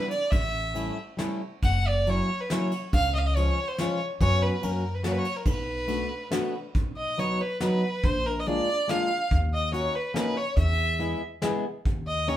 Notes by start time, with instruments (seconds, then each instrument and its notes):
Already playing: steel-string acoustic guitar G3 B3 D4 E4, violin B4
0.11 violin D5, ride
0.30 upright bass A1, violin E5, kick, ride
0.74 steel-string acoustic guitar G3 A3 C#4 E4, ride
1.17 steel-string acoustic guitar G3 A3 C#4 E4, snare, ride
1.63 upright bass F#1, violin F#5, kick, ride
1.87 violin D5
2.07 steel-string acoustic guitar F#3 A#3 C#4 E4, violin C#5, ride
2.40 violin B4
2.50 steel-string acoustic guitar F#3 A#3 C#4 E4, violin C#5, snare, ride
2.71 ride
2.93 upright bass C#2, violin F5, kick, ride
3.15 violin D#5 F5
3.26 violin D#5
3.36 steel-string acoustic guitar F3 G#3 C#4 F4, violin C#5, ride
3.68 violin C5
3.78 steel-string acoustic guitar F3 G#3 C#4 F4, violin C#5, snare, ride
4.21 upright bass F#2, steel-string acoustic guitar F#3 B3 C#4 F#4, violin C#5, kick, ride
4.42 violin B4
4.61 upright bass F#2, steel-string acoustic guitar F#3 A#3 C#4 F#4, violin A#4, ride
4.94 violin B4
5.03 steel-string acoustic guitar F#3 A#3 C#4 F#4, violin C#5, snare, ride
5.12 violin B4
5.18 violin C#5
5.25 ride
5.36 violin A#4
5.46 upright bass B1, violin B4, kick, ride
5.88 steel-string acoustic guitar A3 B3 D4 F#4, ride
6.31 steel-string acoustic guitar A3 B3 D4 F#4, snare, ride
6.75 upright bass B1, kick, closed hi-hat
6.97 violin D#5
7.18 steel-string acoustic guitar F#3 B3 D#4 F#4, violin C#5, closed hi-hat
7.41 violin B4
7.60 steel-string acoustic guitar F#3 B3 D#4 F#4, violin B4, snare, closed hi-hat
8.03 upright bass A#1, violin C5, kick, closed hi-hat
8.26 violin A#4
8.39 violin D#5
8.46 steel-string acoustic guitar G#3 A#3 D4 F4, violin D5, closed hi-hat
8.88 steel-string acoustic guitar G#3 A#3 D4 F4, violin F5, snare, closed hi-hat
9.31 upright bass D#2, kick, closed hi-hat
9.54 violin D#5
9.72 steel-string acoustic guitar A#3 C#4 D#4 F#4, violin C#5, closed hi-hat
9.95 violin B4
10.14 steel-string acoustic guitar A#3 C#4 D#4 F#4, violin B4, snare, closed hi-hat
10.37 violin C#5
10.57 upright bass E2, violin E5, kick, closed hi-hat
10.99 steel-string acoustic guitar G#3 B3 E4 G#4, closed hi-hat
11.42 steel-string acoustic guitar G#3 B3 E4 G#4, snare, closed hi-hat
11.85 upright bass D#2, kick, closed hi-hat
12.07 violin D#5
12.27 steel-string acoustic guitar A#3 C#4 D#4 G4, violin C#5, closed hi-hat